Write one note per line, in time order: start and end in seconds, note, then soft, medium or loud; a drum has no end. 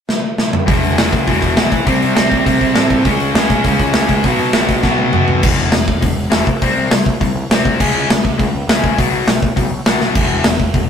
0.09 snare medium
0.38 snare medium
0.53 mid tom medium
0.66 0.80 E1 medium
0.66 0.97 E2 medium
0.66 0.97 B2 medium
0.66 0.97 E3 medium
0.66 kick loud
0.66 open hi-hat medium
0.83 0.96 E1 medium
0.83 open hi-hat medium
0.98 1.11 E1 medium
0.98 1.27 E2 medium
0.98 1.28 B2 medium
0.98 1.29 E3 medium
0.98 snare loud
0.98 open hi-hat medium
1.13 1.25 C#2 medium
1.13 kick medium
1.13 open hi-hat medium
1.27 1.41 E1 medium
1.27 1.57 E2 medium
1.27 1.55 B2 medium
1.27 1.56 E3 loud
1.27 kick medium
1.27 open hi-hat medium
1.42 1.55 E1 medium
1.42 kick medium
1.42 open hi-hat medium
1.56 1.70 B1 medium
1.56 1.72 E2 medium
1.56 1.71 B2 medium
1.56 1.86 E3 loud
1.56 snare loud
1.56 open hi-hat medium
1.72 1.85 C2 medium
1.72 kick medium
1.72 open hi-hat medium
1.85 2.00 C2 medium
1.85 2.15 C3 medium
1.85 2.14 G3 medium
1.85 2.14 C4 loud
1.85 kick medium
1.85 open hi-hat medium
2.02 2.16 C3 medium
2.02 open hi-hat medium
2.15 2.30 C2 medium
2.15 2.44 C3 medium
2.15 2.45 G3 medium
2.15 2.45 C4 loud
2.15 snare loud
2.15 open hi-hat medium
2.32 2.44 C2 medium
2.32 kick medium
2.32 open hi-hat soft
2.45 2.60 C2 medium
2.45 2.74 C3 medium
2.45 2.74 G3 medium
2.45 2.73 C4 loud
2.45 kick medium
2.45 open hi-hat medium
2.61 2.74 C2 medium
2.61 kick medium
2.61 open hi-hat soft
2.74 3.02 A2 medium
2.74 3.05 C3 medium
2.74 3.05 G3 medium
2.74 3.04 C4 loud
2.74 snare loud
2.74 open hi-hat medium
2.90 kick medium
2.90 open hi-hat medium
3.05 3.19 C#2 medium
3.05 3.35 C#3 medium
3.05 3.35 G#3 medium
3.05 3.34 C#4 loud
3.05 kick loud
3.05 open hi-hat medium
3.20 3.33 C#2 medium
3.20 open hi-hat medium
3.34 3.48 C#2 medium
3.34 3.63 C#3 medium
3.34 3.64 G#3 loud
3.34 3.64 C#4 loud
3.34 snare loud
3.34 open hi-hat medium
3.50 3.63 B1 medium
3.50 kick medium
3.50 open hi-hat medium
3.64 3.78 C#2 medium
3.64 3.94 C#3 medium
3.64 3.93 G#3 loud
3.64 3.93 C#4 loud
3.64 kick medium
3.64 open hi-hat medium
3.79 3.93 C#2 medium
3.79 kick medium
3.79 open hi-hat medium
3.94 4.08 C#2 medium
3.94 4.23 C#3 medium
3.94 4.24 G#3 medium
3.94 4.23 C#4 medium
3.94 snare loud
3.94 open hi-hat medium
4.09 4.22 C#2 medium
4.09 kick medium
4.09 open hi-hat medium
4.24 4.37 B1 medium
4.24 4.54 B2 medium
4.24 4.54 F#3 medium
4.24 4.52 B3 medium
4.24 kick loud
4.24 open hi-hat medium
4.39 4.52 B2 medium
4.39 open hi-hat medium
4.53 4.67 B1 medium
4.53 4.83 B2 medium
4.53 4.83 F#3 medium
4.53 4.84 B3 loud
4.53 snare loud
4.53 open hi-hat medium
4.68 4.82 B1 medium
4.68 kick medium
4.68 open hi-hat medium
4.83 4.96 B1 medium
4.83 5.12 B2 medium
4.83 5.12 F#3 medium
4.83 5.12 B3 loud
4.83 kick loud
4.83 snare medium
4.98 5.12 B1 medium
4.98 high tom medium
5.13 5.39 F#2 medium
5.13 5.42 B2 medium
5.13 5.42 F#3 medium
5.13 5.42 B3 loud
5.13 mid tom medium
5.28 floor tom medium
5.42 5.53 E1 medium
5.42 5.72 E2 medium
5.42 5.72 B2 medium
5.42 5.72 E3 medium
5.42 kick loud
5.42 crash loud
5.60 5.69 E1 medium
5.72 5.84 E1 medium
5.72 5.86 E2 medium
5.72 5.87 B2 medium
5.72 snare loud
5.72 open hi-hat medium
5.88 5.97 E1 medium
5.88 kick medium
6.01 6.12 E1 medium
6.01 6.15 E2 medium
6.01 6.15 B2 medium
6.01 kick medium
6.01 open hi-hat medium
6.16 6.26 E1 medium
6.30 6.41 E1 medium
6.30 6.45 E2 medium
6.30 6.46 B2 medium
6.30 6.46 E3 medium
6.30 snare loud
6.30 open hi-hat medium
6.47 6.57 C2 medium
6.47 kick medium
6.61 6.71 C2 medium
6.61 6.90 C3 medium
6.61 6.91 G3 medium
6.61 6.91 C4 medium
6.61 kick loud
6.61 open hi-hat medium
6.77 6.87 C2 medium
6.91 7.01 C2 medium
6.91 7.04 C3 medium
6.91 7.05 G3 medium
6.91 snare loud
6.91 open hi-hat medium
7.06 7.16 C2 medium
7.06 kick medium
7.21 7.30 C2 medium
7.21 7.34 C3 medium
7.21 7.34 G3 medium
7.21 kick medium
7.21 open hi-hat medium
7.35 7.45 C2 loud
7.50 7.59 C2 medium
7.50 7.79 C3 medium
7.50 7.80 G3 loud
7.50 7.80 C4 loud
7.50 snare loud
7.50 open hi-hat medium
7.65 7.75 C2 medium
7.65 kick medium
7.80 7.90 C#2 medium
7.80 8.08 C#3 medium
7.80 8.08 G#3 medium
7.80 8.09 C#4 medium
7.80 kick loud
7.80 crash loud
7.94 8.04 C#2 medium
8.09 8.19 C#2 medium
8.09 8.23 C#3 medium
8.09 8.23 G#3 medium
8.09 snare loud
8.09 open hi-hat medium
8.24 8.34 C#2 medium
8.24 kick medium
8.38 8.49 C#2 medium
8.38 8.52 C#3 medium
8.38 8.52 G#3 medium
8.38 kick medium
8.38 open hi-hat medium
8.54 8.63 C#2 medium
8.67 8.77 C#2 medium
8.67 8.98 C#3 medium
8.67 8.98 G#3 medium
8.67 snare loud
8.67 open hi-hat medium
8.71 8.98 C#4 loud
8.83 8.92 C#2 medium
8.83 kick medium
8.98 9.08 B1 medium
8.98 9.26 B2 medium
8.98 9.27 F#3 medium
8.98 9.27 B3 loud
8.98 kick loud
8.98 open hi-hat medium
9.11 9.21 B1 medium
9.27 9.37 B1 medium
9.27 9.41 B2 medium
9.27 9.41 F#3 medium
9.27 snare loud
9.27 open hi-hat medium
9.42 9.52 B1 medium
9.42 kick medium
9.56 9.67 B1 medium
9.56 9.70 B2 medium
9.56 9.70 F#3 medium
9.56 kick loud
9.56 open hi-hat medium
9.70 9.80 B1 medium
9.86 9.96 B1 medium
9.86 10.15 B2 medium
9.86 10.15 F#3 medium
9.86 10.15 B3 loud
9.86 snare loud
9.86 open hi-hat medium
10.00 10.10 B1 medium
10.00 snare medium
10.15 10.25 E1 medium
10.15 10.44 E2 medium
10.15 10.44 B2 medium
10.15 10.45 E3 medium
10.15 kick loud
10.15 crash loud
10.30 10.40 E1 medium
10.44 10.55 E1 medium
10.44 10.58 E2 medium
10.44 10.59 B2 medium
10.44 snare loud
10.44 open hi-hat medium
10.60 10.69 E1 medium
10.60 kick medium
10.74 10.83 E1 medium
10.74 10.88 E2 medium
10.74 10.88 B2 medium
10.74 kick medium
10.74 open hi-hat medium